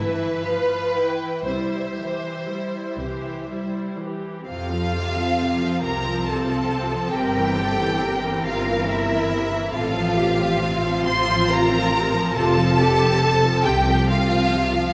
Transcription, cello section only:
Already playing: G2
1.47 C3
2.99 C3
5.84 F4
7.14 A#4
7.57 A4
8.01 A#4
9.74 A4
10.17 G4
10.60 F4
12.34 F4
12.79 G4
13.23 A4
13.66 C4

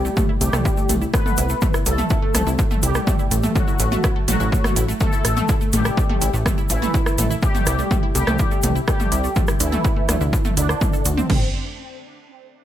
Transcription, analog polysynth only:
Already playing: G3 G4
0.41 G3 G4
1.13 B3 B4
1.86 A3 A4
2.83 G3 G4
3.55 F#3 F#4
4.28 F#3 F#4
5.01 A3 A4
5.73 G3 G4
6.70 E3 E4
7.43 G3 G4
8.15 G3 G4
8.88 G3 G4
9.60 E3 E4
10.57 D3 D4
11.30 C4

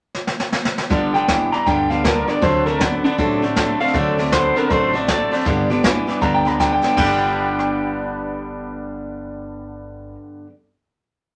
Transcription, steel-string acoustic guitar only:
0.90 G2 D3 G3 B3 D4 G4
1.14 G3 B3 D4 G4
1.28 G3 B3 D4 G4
1.53 G3 B3 D4 G4
1.66 G2 D3 G3 B3 D4 G4
1.90 G3 B3 D4 G4
2.04 G3 B3 D4 G4
2.27 G3 B3 D4 G4
2.42 D3 F#3 C4 D4 A4
2.66 C4 D4 A4
2.79 F#3 C4 D4 A4
3.04 C4 D4 A4
3.18 D3 F#3 C4 D4 A4
3.42 C4 D4 A4
3.56 F#3 C4 D4 A4
3.80 C4 D4 A4
3.94 D3 F#3 C4 D4 A4
4.18 C4 D4 A4
4.31 F#3 C4 D4 A4
4.56 C4 D4 A4
4.70 D3 F#3 C4 D4 A4
4.94 C4 D4 A4
5.07 F#3 C4 D4 A4
5.31 C4 D4 A4
5.45 G2 D3 G3 B3 D4 G4
5.70 G3 B3 D4 G4
5.83 G3 B3 D4 G4
6.07 G3 B3 D4 G4
6.21 G2 D3 G3 B3 D4 G4
6.45 G3 B3 D4 G4
6.59 G3 B3 D4 G4
6.83 G3 B3 D4 G4
6.94 G2 D3
6.99 G3 B3
7.04 D4 G4

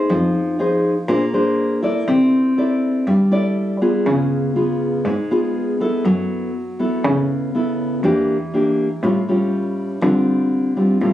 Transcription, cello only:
0.10 F2
1.09 A#2
2.08 C3
3.07 G2
4.07 C#3
5.05 G#2
6.05 F#2
7.05 C#3
8.03 E2
9.03 A2
10.03 D3
11.02 A2

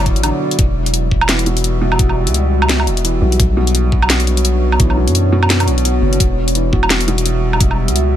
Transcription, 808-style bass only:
Already playing: F#1
0.16 A1
0.59 E1
1.99 E1
2.27 C#2
2.87 E1
3.22 B1
3.40 B1
4.80 B1
5.07 F#2
5.67 B1
6.02 F#1
6.20 E1
7.61 E1
7.88 C#2

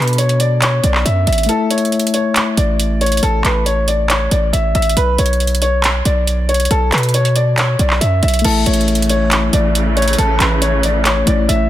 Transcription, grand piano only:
Already playing: B4
0.18 C#5
0.40 D5
0.62 C#5
0.84 D5
1.05 E5
1.27 E5
1.49 A4
1.71 C#5
2.14 C#5
2.58 D5
3.01 C#5
3.23 A4
3.44 B4
3.66 C#5
3.88 D5
4.10 C#5
4.32 D5
4.53 E5
4.75 E5
4.97 B4
5.19 C#5
5.62 C#5
6.05 D5
6.49 C#5
6.71 A4
6.92 B4
7.14 C#5
7.36 D5
7.58 C#5
7.80 D5
8.01 E5
8.23 E5
8.45 A4
8.66 C#5
9.10 C#5
9.53 D5
9.97 C#5
10.18 A4
10.40 B4
10.62 C#5
10.84 D5
11.06 C#5
11.27 D5
11.49 E5

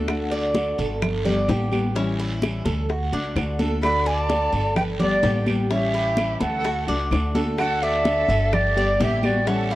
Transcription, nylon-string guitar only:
0.07 D3 A3 D4 F#4
0.55 D3 A3 D4 F#4
1.02 muted nylon-string guitar stroke
1.25 G3 B3 G4
1.49 D3 G3 B3 G4
1.71 G3 B3 G4
1.95 E3 G3 C#4 E4
2.42 E3 G3 C#4 E4
2.89 muted nylon-string guitar stroke
3.12 A3 D4 F#4
3.36 D3 A3 D4 F#4
3.59 A3 D4 F#4
3.82 D3 A3 D4 F#4
4.30 D3 A3 D4 F#4
4.77 muted nylon-string guitar stroke
5.00 G3 B3 G4
5.23 D3 G3 B3 G4
5.46 G3 B3 G4
5.70 E3 G3 C#4 E4
6.17 E3 G3 C#4 E4
6.64 muted nylon-string guitar stroke
6.88 A3 D4 F#4
7.11 D3 A3 D4 F#4
7.35 A3 D4 F#4
7.58 D3 A3 D4 F#4
8.05 D3 A3 D4 F#4
8.53 muted nylon-string guitar stroke
8.76 G3 B3 G4
9.00 D3 G3 B3 G4
9.23 G3 B3 G4
9.47 E3 G3 C#4 E4

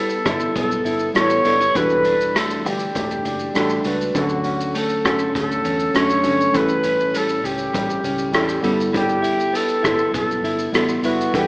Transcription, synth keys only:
Already playing: G3 B3 E4 A4
1.13 G3 B3 E4 A4
1.44 G3 B3 E4 A4
1.74 G3 D4 F#4 A4
3.54 G3 D4 F#4 A4
3.84 G3 D4 F#4 B4
4.14 F#3 C#4 D4 A4
5.93 F#3 C#4 D4 A4
6.23 F#3 C#4 D4 A4
6.52 G3 C#4 E4 A4
8.32 G3 C#4 E4 A4
8.62 G3 B3 E4 A4
10.72 G3 B3 E4 A4
11.02 G3 B3 E4 B4
11.33 G3 D4 A4 F#5

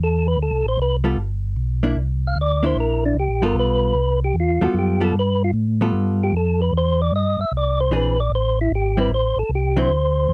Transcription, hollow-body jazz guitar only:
1.04 G3 B3 F4 A4
1.83 A#3 D4 E4
2.63 A#3 D4 E4
3.42 G3 B3 F4 A4
4.61 G3 B3 F4 A4
5.00 G3 B3 F4 A4
5.81 G3 B3 F4 A4
7.91 E3 C4 D4 G#4
8.97 G3 C4 E4
9.77 D3 F#3 C4 E4

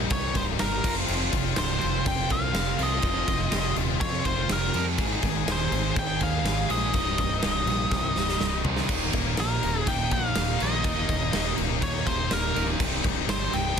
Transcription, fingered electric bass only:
0.11 C2
0.35 C1
0.61 G1
0.84 F1
1.09 F1
1.33 F1
1.58 C1
1.83 F1
2.06 F1
2.31 C2
2.54 F1
2.79 C2
3.03 F1
3.28 F1
3.53 F1
3.77 D#1
4.01 F2
4.25 F1
4.50 F1
4.75 F2
4.99 G#1
5.23 G#1
5.47 D#1
5.71 G#1
5.96 G#1
6.20 D#2
6.44 G#1
6.69 A#1
6.94 C1
7.19 C1
7.43 C1
7.66 A#1
7.91 C2
8.15 C1
8.41 C1
8.64 C2
8.89 D#1
9.13 D#1
9.38 A#1
9.63 D#1
9.87 D#1
10.11 A#1
10.36 D#1
10.61 A#1
10.85 D#1
11.09 D#1
11.33 D#1
11.59 C#1
11.82 D#2
12.07 D#1
12.32 D#1
12.57 C#1
12.79 C1
13.04 C1
13.28 G1
13.53 C1

